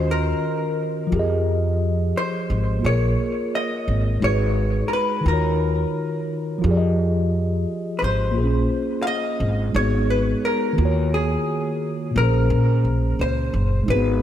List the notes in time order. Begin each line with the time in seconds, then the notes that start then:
Already playing: D#2 D#3 C#4 F4 F#4 C5 D#5
0.11 A#4
1.07 F3 F4
1.12 F2 G4
1.16 G#4 D#5
2.17 C5
2.50 G#1
2.79 A#3 F4
2.84 A#1 G#4 C#5
2.89 A#4 C#5
3.55 D#5
3.88 G#1
4.20 G#1 G#3 D#4 F#4 C#5
4.25 G#4 B4
4.88 A#4
4.93 B4
5.21 D#3 D#4
5.26 D#2 F4 A#4
5.30 F#4 C#5
6.58 F3 F4
6.64 F2 G4
6.68 G#4 D5
6.77 D#5
7.99 G#1 B4
8.04 C5
8.31 A#3 F4
8.36 A#1 G#4
8.41 C#4 C5
9.02 F5
9.07 D#5
9.40 G#1
9.73 G#1 G#3 D#4 F#4 C#5
9.77 B3 G#4
10.10 B4
10.45 A#4
10.73 D#3 A#3
10.78 D#2 F4
10.82 F#4 C#5
11.14 G#4
12.11 A#2 A#3
12.16 A#1 C#4 A#4
12.20 G#4 C5
12.50 A#2
12.85 A#1
13.19 C#2 C5
13.54 F#1
13.83 G#3 D#4
13.88 G#1 F#4 B4
13.93 B3 G#4